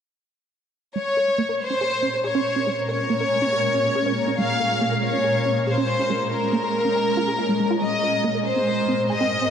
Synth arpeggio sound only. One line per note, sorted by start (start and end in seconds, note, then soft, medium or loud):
0.96 0.98 G#3 medium
1.17 1.19 A#4 medium
1.38 1.42 A#3 medium
1.49 1.51 A#4 medium
1.70 1.74 C#4 medium
1.81 1.84 G#4 medium
2.03 2.09 C#4 medium
2.24 2.28 G#4 medium
2.35 2.41 C#4 loud
2.56 2.60 C#4 medium
2.67 2.69 G#3 medium
2.88 2.91 A#4 medium
3.10 3.14 A#3 medium
3.20 3.23 A#4 medium
3.42 3.46 C#4 medium
3.53 3.55 G#4 medium
3.74 3.80 C#4 medium
3.96 3.99 G#4 medium
4.06 4.12 C#4 loud
4.28 4.32 C#4 medium
4.39 4.41 G#3 medium
4.60 4.62 A#4 medium
4.81 4.85 A#3 medium
4.92 4.94 A#4 medium
5.13 5.17 C#4 medium
5.24 5.27 G#4 medium
5.46 5.51 C#4 medium
5.67 5.71 G#4 medium
5.78 5.84 C#4 loud
5.99 6.03 C#4 medium
6.10 6.12 G#3 medium
6.31 6.34 A#4 medium
6.53 6.57 A#3 medium
6.64 6.66 A#4 medium
6.85 6.89 C#4 medium
6.96 6.98 G#4 medium
7.17 7.19 F4 loud
7.28 7.32 G#4 medium
7.39 7.44 F4 medium
7.49 7.53 G#3 medium
7.60 7.66 G#3 medium
7.71 7.76 F4 loud
7.81 7.84 G#3 medium
8.03 8.05 A#4 medium
8.24 8.28 A#3 medium
8.35 8.37 A#4 medium
8.56 8.60 C4 medium
8.67 8.69 G#4 medium
8.88 8.94 C4 medium
9.10 9.14 G#4 medium
9.21 9.26 C4 loud
9.42 9.46 C4 medium